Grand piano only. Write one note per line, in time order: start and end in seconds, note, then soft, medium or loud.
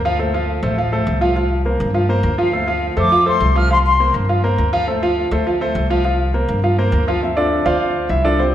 0.05 0.17 F3 loud
0.05 0.17 F4 loud
0.05 0.17 F5 loud
0.19 0.31 A3 medium
0.19 0.31 A4 medium
0.19 0.32 C5 medium
0.34 0.58 F3 medium
0.34 0.58 F4 medium
0.34 0.58 F5 loud
0.63 0.75 A3 medium
0.63 0.75 A4 medium
0.63 0.75 C5 medium
0.78 0.90 F3 medium
0.78 0.90 F4 medium
0.78 0.90 F5 medium
0.92 1.16 A3 medium
0.92 1.17 A4 medium
0.92 1.17 C5 medium
1.21 1.33 F3 medium
1.21 1.33 F4 medium
1.21 1.34 F5 loud
1.36 1.60 F3 medium
1.36 1.60 F4 medium
1.36 1.60 F5 medium
1.65 1.89 A#3 medium
1.65 1.90 A#4 medium
1.65 1.90 C5 medium
1.94 2.06 F3 medium
1.94 2.06 F4 medium
1.94 2.07 F5 medium
2.09 2.33 A#3 medium
2.09 2.33 A#4 medium
2.09 2.33 C5 medium
2.38 2.50 F3 medium
2.38 2.50 F4 loud
2.38 2.51 F5 medium
2.53 2.65 A3 medium
2.53 2.65 A4 medium
2.53 2.65 C5 medium
2.67 2.91 F3 medium
2.67 2.92 F4 medium
2.67 2.92 F5 medium
2.97 3.09 A3 medium
2.97 3.09 A4 medium
2.97 3.09 C5 medium
3.12 3.24 F3 medium
3.12 3.24 F4 medium
3.12 3.24 F5 medium
3.26 3.50 A3 medium
3.26 3.50 A4 medium
3.26 3.50 C5 medium
3.55 3.67 F3 loud
3.55 3.68 F4 medium
3.55 3.68 F5 loud
3.71 3.94 F3 medium
3.71 3.94 F4 medium
3.71 3.95 F5 medium
4.00 4.24 A#3 medium
4.00 4.24 A#4 medium
4.00 4.24 C5 medium
4.29 4.41 F3 medium
4.29 4.41 F4 medium
4.29 4.41 F5 medium
4.44 4.68 A#3 medium
4.44 4.68 A#4 medium
4.44 4.68 C5 medium
4.73 4.85 F3 loud
4.73 4.85 F4 loud
4.73 4.85 F5 loud
4.87 4.99 A3 medium
4.87 5.00 A4 medium
4.87 5.00 C5 medium
5.02 5.26 F3 medium
5.02 5.27 F4 medium
5.02 5.27 F5 loud
5.32 5.44 A3 medium
5.32 5.44 A4 medium
5.32 5.44 C5 medium
5.47 5.58 F3 medium
5.47 5.58 F4 medium
5.47 5.59 F5 medium
5.61 5.85 A3 medium
5.61 5.85 A4 medium
5.61 5.85 C5 medium
5.90 6.02 F3 loud
5.90 6.02 F4 loud
5.90 6.02 F5 loud
6.04 6.29 F3 medium
6.04 6.29 F4 medium
6.04 6.29 F5 medium
6.34 6.58 A#3 medium
6.34 6.58 A#4 medium
6.34 6.58 C5 medium
6.63 6.75 F3 medium
6.63 6.75 F4 medium
6.63 6.76 F5 medium
6.78 7.02 A#3 medium
6.78 7.02 A#4 medium
6.78 7.03 C5 medium
7.08 7.19 F3 loud
7.08 7.20 F4 loud
7.08 7.20 F5 medium
7.22 8.35 F3 medium
7.22 8.35 C4 medium
7.22 8.08 E5 medium
7.37 7.64 D4 medium
7.37 7.64 F4 medium
7.37 7.64 A4 medium
7.37 7.64 D5 medium
7.66 8.07 F4 medium
7.66 8.07 C5 medium
7.66 8.07 D5 medium
7.66 8.07 F5 loud
8.10 8.24 E4 medium
8.10 8.24 E5 medium
8.25 8.39 D4 medium
8.25 8.38 F4 medium
8.25 8.39 A4 medium
8.25 8.39 D5 medium
8.39 8.54 C4 medium
8.39 8.54 F4 medium
8.39 8.54 G4 medium
8.39 8.54 C5 medium